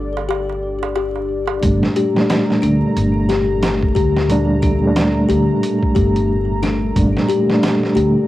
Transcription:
Already playing: upright bass G1, reed electric piano A#2 G3 A3 D4, analog synth pad D4 D5, music box A4
0.17 darbuka tek
0.29 music box G4, darbuka tek
0.50 darbuka tek
0.83 darbuka tek
0.96 music box G4, darbuka tek
1.16 darbuka tek
1.48 darbuka tek
1.61 upright bass G1, reed electric piano A#2 G3 A3 D4, analog synth pad A3 A#5, kick, closed hi-hat
1.83 snare
1.96 music box G4, closed hi-hat
2.14 reed electric piano A#2 G3, snare
2.18 reed electric piano A3 D4
2.30 snare, closed hi-hat
2.50 snare
2.62 upright bass D2, music box D4, closed hi-hat
2.96 upright bass G1, closed hi-hat
3.29 music box G4, snare, closed hi-hat
3.63 snare, closed hi-hat
3.83 kick
3.95 upright bass D2, music box G4, kick, closed hi-hat
4.16 snare
4.28 reed electric piano A#2 G3 A3 D4, closed hi-hat
4.62 music box D4, kick, closed hi-hat
4.80 reed electric piano A#2 G3
4.85 reed electric piano A3 D4
4.96 snare, closed hi-hat
5.29 upright bass D2, music box G4, closed hi-hat
5.63 closed hi-hat
5.83 kick
5.95 upright bass G1, music box G4, kick, closed hi-hat
6.16 closed hi-hat
6.63 music box D4, snare, closed hi-hat
6.95 upright bass G1, reed electric piano A#2 G3 A3 D4, kick, closed hi-hat
7.17 snare
7.29 music box G4, closed hi-hat
7.46 reed electric piano A#2 G3, snare
7.51 reed electric piano A3 D4
7.63 snare, closed hi-hat
7.83 snare
7.95 upright bass D2, music box G4, closed hi-hat

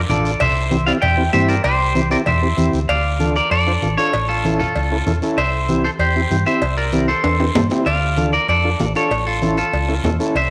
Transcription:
0.09 fingered electric bass A1, transistor combo organ D4 F4 A4, clean electric guitar A4 D5, high conga, low conga, short guiro
0.25 short guiro
0.40 fingered electric bass C2, clean electric guitar C5 E5, cowbell, high conga, low conga, long guiro
0.71 transistor combo organ C4 E4 G4, high conga, short guiro
0.86 transistor combo organ C4 E4 G4, clean electric guitar D5 F5, short guiro
1.02 fingered electric bass E2, clean electric guitar E5 G5, cowbell, high conga, low conga, long guiro
1.17 transistor combo organ C4 E4 G4
1.33 fingered electric bass G2, transistor combo organ C4 E4 G4, clean electric guitar C5 E5, high conga, low timbale, short guiro
1.48 clean electric guitar A#4 D5, short guiro
1.64 fingered electric bass C2, clean electric guitar G4 C5, cowbell, high conga, long guiro
1.95 transistor combo organ C4 E4 G4, high conga, short guiro
2.10 transistor combo organ C4 E4 G4, clean electric guitar A#4 D5, short guiro
2.26 fingered electric bass E2, clean electric guitar C5 E5, cowbell, high conga, low conga, long guiro
2.42 transistor combo organ C4 E4 G4
2.57 fingered electric bass E2, transistor combo organ C4 E4 G4, high conga, short guiro
2.73 fingered electric bass D2, short guiro
2.89 fingered electric bass D2, clean electric guitar D5 F5, cowbell, high conga, long guiro
3.20 transistor combo organ D4 F4 A4, high conga, short guiro
3.36 clean electric guitar A#4 D5, short guiro
3.51 fingered electric bass F2, clean electric guitar A4 D5, cowbell, high conga, long guiro
3.67 transistor combo organ D4 F4 C5
3.82 fingered electric bass A1, transistor combo organ D4 F4 A4, high conga, short guiro
3.98 transistor combo organ D4 F4 A4, clean electric guitar A4 C#5, short guiro
4.13 fingered electric bass A1, cowbell, high conga, long guiro
4.29 clean electric guitar F4 A4
4.45 transistor combo organ C#4 E4 A4, high conga, short guiro
4.59 clean electric guitar F4 A4, low conga, short guiro
4.76 fingered electric bass C#2, cowbell, high conga, long guiro
4.91 transistor combo organ C#4 E4 A4
5.06 fingered electric bass E2, transistor combo organ C#4 E4 A4, high conga, low conga, short guiro
5.22 transistor combo organ C#4 E4 A4, short guiro
5.37 fingered electric bass C2, clean electric guitar C5 E5, cowbell, high conga, long guiro
5.68 transistor combo organ C4 E4 G4, high conga, short guiro
5.84 clean electric guitar A4 C5, short guiro
5.99 fingered electric bass E2, clean electric guitar G4 C5, cowbell, high conga, long guiro
6.16 transistor combo organ C4 E4 G4
6.30 fingered electric bass G2, transistor combo organ C4 E4 G4, high conga, short guiro
6.46 transistor combo organ C4 E4 G4, clean electric guitar C5 E5, short guiro
6.62 fingered electric bass C2, cowbell, high conga, long guiro
6.77 clean electric guitar A#4 D5
6.92 transistor combo organ C4 E4 G4, high conga, short guiro
7.08 clean electric guitar A4 C5, short guiro
7.24 fingered electric bass E2, cowbell, high timbale, long guiro
7.40 transistor combo organ C4 E4 G4, high timbale
7.55 fingered electric bass G2, transistor combo organ C4 E4 A4, high conga, low conga, low timbale, short guiro
7.70 transistor combo organ C4 E4 G4, low timbale, short guiro
7.86 fingered electric bass D2, clean electric guitar D5 F5, cowbell, high conga, long guiro
8.17 transistor combo organ D4 F4 A4, high conga, short guiro
8.33 clean electric guitar A#4 D5, short guiro
8.48 fingered electric bass F2, clean electric guitar A4 D5, cowbell, high conga, long guiro
8.64 transistor combo organ D4 F4 A4
8.80 fingered electric bass A1, transistor combo organ D4 F4 A4, high conga, low timbale, short guiro
8.95 transistor combo organ D4 F4 A4, clean electric guitar A4 C#5, short guiro
9.11 fingered electric bass A1, cowbell, high conga, long guiro
9.27 clean electric guitar F4 A4
9.42 transistor combo organ C#4 E4 A4, high conga, short guiro
9.57 clean electric guitar F4 A4, short guiro
9.73 fingered electric bass C#2, cowbell, high conga, long guiro
9.88 transistor combo organ C#4 E4 A4
10.04 fingered electric bass E2, transistor combo organ C#4 E4 A4, high conga, low conga, low timbale, short guiro
10.19 transistor combo organ C#4 E4 A4, short guiro
10.35 fingered electric bass C2, clean electric guitar C5 E5, cowbell, long guiro

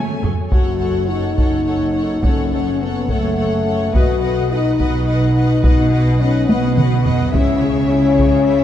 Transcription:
Already playing: trombone section C#3 F#3, french horn section A3 C#4, cello section A3, string section C#4 F#4 C#5 G#5, flute section A4, violin section A4 G#5
0.23 double bass section F#2, viola section G#4 A4, taiko low
0.51 double bass section F#1, cello section F#2, french horn section F#4, viola section A4, violin section C#5 F#5, taiko
0.81 viola section A4, violin section C#5 F#5
1.08 french horn section D#4, viola section A4, violin section C#5 F#5
1.36 double bass section F#1, cello section F#2, viola section A4, violin section C#5 F#5, taiko
1.66 viola section A4, violin section C#5 F#5
1.93 viola section A4, violin section C#5 F#5
2.23 double bass section F#1, cello section F#2, french horn section C#4, viola section A4, violin section C#5 F#5, taiko
2.53 viola section A4, violin section C#5 F#5
2.81 french horn section B3, viola section A4, violin section C#5 F#5
3.08 double bass section F#1, cello section F#2, french horn section A3, viola section A4, violin section C#5 F#5, taiko
3.37 viola section A4, violin section C#5 F#5
3.66 viola section A4, violin section C#5 F#5
3.93 double bass section B1, cello section B2, french horn section F#4, viola section B4, violin section D#5 F#5, taiko
4.21 viola section B4, violin section D#5 F#5
4.49 french horn section D#4, viola section B4, violin section D#5 F#5
4.78 double bass section B1, cello section B2, viola section B4, violin section D#5 F#5, taiko
5.07 viola section B4, violin section D#5 F#5
5.34 viola section B4, violin section D#5 F#5
5.63 double bass section B1, cello section B2, french horn section D#4, viola section B4, violin section D#5 F#5, taiko
5.92 viola section B4, violin section D#5 F#5
6.19 french horn section C#4, viola section B4, violin section D#5 F#5
6.48 double bass section B1, cello section B2, french horn section B3, viola section B4, violin section D#5 F#5, taiko high
6.76 viola section B4, violin section D#5 F#5, taiko mid
7.02 viola section B4, violin section D#5, taiko low
7.07 violin section F#5
7.32 double bass section C#2, cello section C#3, french horn section C#4, viola section E4, violin section C#5 E5, taiko
7.62 viola section G#4, violin section C#5 E5
7.90 viola section E4, violin section C#5 E5
8.17 viola section G#4, violin section C#5 E5, taiko
8.45 viola section E4, violin section C#5 E5

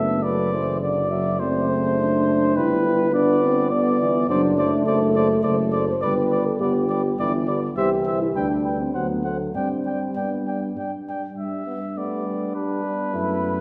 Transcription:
Already playing: tuba F#1, euphonium A3, french horn B3, flugelhorn A4, trumpet E5
0.22 euphonium F#3, french horn A3, flugelhorn B4, trumpet D5
0.53 euphonium E3, flugelhorn C5
0.80 euphonium D3, trumpet D5, flugelhorn D5
1.10 euphonium F#3, flugelhorn E5
1.39 euphonium A3, french horn C4, trumpet C5, flugelhorn D5
1.68 flugelhorn C5
1.98 french horn D4
2.55 tuba G1, euphonium G3, french horn E4, flugelhorn B4, trumpet B4
3.13 euphonium B3, french horn D4, trumpet D5
3.44 french horn C4
3.70 euphonium D3, french horn B3, trumpet D5, flugelhorn D5
3.99 euphonium E3
4.28 tuba F#1, euphonium F#3, french horn D4, flugelhorn C5, trumpet D5
4.57 euphonium A3, flugelhorn C5, trumpet D5
4.86 tuba F#1, french horn A4, flugelhorn C5, trumpet D5
5.15 flugelhorn C5, trumpet D5
5.43 tuba F#1, french horn A4, flugelhorn C5, trumpet D5
5.72 flugelhorn C5, trumpet D5
5.89 french horn C5
6.01 tuba G1, euphonium G3, french horn B4, flugelhorn B4, trumpet D5
6.31 flugelhorn B4, trumpet D5
6.47 french horn A4
6.60 tuba G1, euphonium B3, french horn G4, flugelhorn B4, trumpet D5
6.89 euphonium G3, flugelhorn B4, trumpet D5
7.19 tuba G1, euphonium E3, flugelhorn B4, trumpet D5
7.47 euphonium D3, flugelhorn B4, trumpet D5
7.77 tuba C2, euphonium E3, french horn G4, flugelhorn C5, trumpet E5
8.05 flugelhorn C5, trumpet E5
8.22 french horn E4
8.34 tuba D2, euphonium G3, french horn D4, flugelhorn B4, trumpet G5
8.63 flugelhorn B4, trumpet G5
8.80 french horn C4
8.93 tuba D2, euphonium F#3, french horn B3, flugelhorn C5, trumpet F#5
9.24 french horn A3, flugelhorn C5, trumpet F#5
9.54 tuba G2, euphonium G3, french horn C4, flugelhorn D5, trumpet G5
9.85 flugelhorn D5, trumpet G5
10.16 tuba G2, french horn B3, flugelhorn D5, trumpet G5
10.47 flugelhorn D5, trumpet G5
10.76 tuba G2, flugelhorn D5, trumpet G5
11.08 flugelhorn D5, trumpet G5
11.36 tuba G2, euphonium G3, trumpet E5
11.67 euphonium B3
11.96 french horn G3, euphonium A3, flugelhorn B3, trumpet D5
12.26 euphonium G3, french horn A3
12.55 euphonium G3, french horn G3, flugelhorn D4, trumpet B4
12.84 euphonium B3, french horn B3
13.13 tuba F#2, french horn A3, flugelhorn E4

